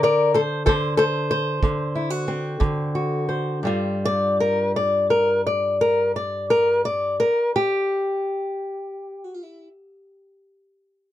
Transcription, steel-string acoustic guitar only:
0.00 0.67 D3 medium
0.00 0.35 A#4 medium
0.00 0.34 D5 medium
0.34 0.40 A4 medium
0.34 0.65 C5 loud
0.66 1.62 D3 medium
0.66 0.71 A4 medium
0.66 0.97 C5 medium
0.97 1.03 A4 medium
0.97 1.29 C5 loud
1.31 2.61 C5 loud
1.63 2.59 D3 medium
1.95 2.10 E4 soft
2.10 2.94 F#4 soft
2.28 3.63 C4 medium
2.60 3.63 D3 medium
2.95 3.59 F#4 soft
3.29 3.59 C5 soft
3.63 7.24 G2 medium
3.63 7.26 G3 medium
3.63 7.28 F4 medium
4.05 4.36 D5 loud
4.40 4.71 A#4 medium
4.76 5.06 D5 medium
5.10 5.40 A#4 medium
5.47 5.76 D5 medium
5.81 6.11 A#4 medium
6.16 6.46 D5 medium
6.50 6.80 A#4 medium
6.85 7.15 D5 medium
7.20 7.50 A#4 medium
7.56 9.19 G4 medium
9.19 9.32 F#4 medium
9.32 9.45 F4 medium
9.45 9.68 E4 medium

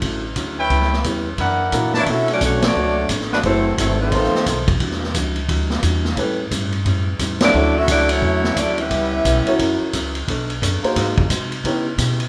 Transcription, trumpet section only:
0.58 1.02 E4 medium
0.58 1.02 B4 medium
0.58 1.02 C#5 medium
0.58 1.02 G5 loud
1.38 1.90 E4 medium
1.38 1.90 A#4 medium
1.38 1.90 D5 medium
1.38 1.90 F#5 medium
1.94 2.03 D4 medium
1.94 2.03 B4 medium
1.94 2.03 C#5 medium
1.94 2.03 A5 loud

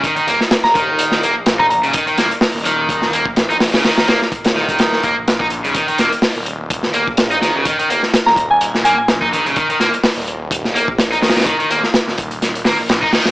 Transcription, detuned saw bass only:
0.27 0.38 D#1 loud
0.64 0.96 D#1 medium
0.99 1.32 D#1 loud
1.36 1.44 A#1 soft
1.46 1.80 A#1 medium
1.83 1.92 D#1 medium
2.17 2.29 D#1 loud
2.54 2.86 D#1 medium
2.89 3.22 D#1 medium
3.25 3.35 A#1 soft
3.37 3.70 A#1 medium
3.74 3.83 D#1 medium
4.08 4.19 D#1 loud
4.45 4.77 D#1 medium
4.80 5.13 D#1 medium
5.16 5.25 A#1 soft
5.27 5.61 A#1 medium
5.64 5.73 D#1 medium
5.99 6.10 D#1 loud
6.36 6.67 D#1 medium
6.70 7.04 D#1 loud
7.07 7.16 A#1 soft
7.18 7.51 A#1 medium
7.55 7.64 D#1 medium
7.89 8.00 D#1 loud
8.26 8.58 D#1 medium
8.61 8.94 D#1 loud
8.98 9.06 A#1 soft
9.08 9.42 A#1 medium
9.45 9.54 D#1 medium
9.80 9.91 D#1 loud
10.17 10.48 D#1 medium
10.51 10.84 D#1 loud
10.88 10.97 A#1 soft
10.99 11.32 A#1 medium
11.35 11.44 D#1 medium
11.70 11.81 D#1 loud
12.07 12.39 D#1 medium
12.41 12.75 D#1 medium
12.78 12.87 A#1 soft
12.89 13.00 A#1 medium
13.26 13.31 A#1 loud

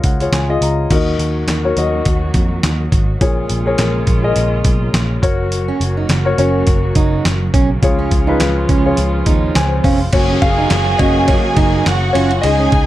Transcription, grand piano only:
0.00 0.93 C#3 medium
0.00 0.20 F4 medium
0.00 0.21 G#4 medium
0.00 0.91 A#4 medium
0.00 0.22 C#5 medium
0.00 0.50 D#5 medium
0.00 0.92 F5 medium
0.04 0.31 F#5 medium
0.20 0.46 F4 medium
0.20 0.46 G#4 medium
0.20 0.46 C#5 medium
0.34 0.60 G#5 medium
0.49 0.86 F4 medium
0.49 0.87 G#4 medium
0.49 0.87 D#5 medium
0.63 0.89 A#5 medium
0.91 1.73 D#3 medium
0.91 1.56 F#4 medium
0.91 1.56 A#4 medium
0.91 1.56 D#5 medium
1.64 1.76 F#4 medium
1.64 1.76 A#4 medium
1.64 1.76 C#5 medium
1.77 2.82 F#4 medium
1.77 2.82 A#4 medium
1.77 2.82 D#5 medium
3.21 4.04 A#2 medium
3.21 3.61 G#4 medium
3.21 3.61 A#4 medium
3.21 3.61 C#5 medium
3.66 4.17 G#4 medium
3.66 4.17 A#4 medium
3.66 4.17 C#5 medium
4.23 5.23 G#4 medium
4.23 5.21 A#4 medium
4.23 5.23 D#5 medium
5.22 6.13 F#4 medium
5.22 6.13 A#4 medium
5.22 6.14 C#5 medium
6.25 6.36 F#4 medium
6.25 6.37 A#4 medium
6.25 6.37 C#5 medium
6.38 7.43 F#4 medium
6.38 7.43 A#4 medium
6.38 7.43 C#5 medium
7.82 8.65 C#3 medium
7.82 8.22 F4 medium
7.82 8.23 G#4 medium
7.82 8.23 C#5 medium
8.27 8.78 F4 medium
8.27 8.78 G#4 medium
8.27 8.79 B4 medium
8.85 9.87 F4 medium
8.85 9.87 G#4 medium
8.85 9.87 C#5 medium
9.56 9.83 G#5 medium
9.85 10.11 F5 medium
10.13 10.53 A#3 medium
10.13 10.53 C#4 soft
10.13 10.41 F#4 medium
10.13 10.43 C#5 medium
10.42 10.96 G#4 medium
10.42 11.01 F5 loud
10.98 11.25 A#3 soft
10.98 11.26 C#4 soft
10.98 11.07 F#4 medium
10.98 11.05 D#5 medium
11.27 11.82 F#4 medium
11.27 11.81 C#5 medium
12.13 12.22 F4 medium
12.13 12.20 C#5 medium
12.41 12.83 G#3 medium
12.41 12.83 C#4 soft
12.41 12.83 D#4 medium
12.41 12.86 G#4 medium
12.41 12.86 D#5 loud

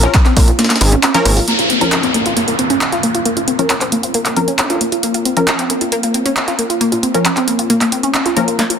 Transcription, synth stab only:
0.03 0.15 F3 medium
0.03 0.15 C#4 medium
0.03 0.15 A#4 medium
1.14 1.24 F3 loud
1.14 1.24 C#4 medium
1.14 1.24 A#4 loud
1.25 1.37 F3 medium
1.25 1.37 C#4 medium
1.25 1.37 A#4 loud
1.81 2.00 F3 medium
1.81 2.00 C#4 medium
1.81 2.00 A#4 loud
3.59 3.70 F3 medium
3.59 3.70 C#4 medium
3.59 3.70 A#4 medium
4.37 4.48 F3 medium
4.37 4.48 C#4 medium
4.37 4.48 A#4 loud
5.37 5.55 F3 medium
5.37 5.55 C#4 medium
5.37 5.55 A#4 loud
7.15 7.26 F3 medium
7.15 7.26 C#4 medium
7.15 7.26 A#4 medium
8.37 8.48 F3 medium
8.37 8.48 C#4 medium
8.37 8.48 A#4 medium

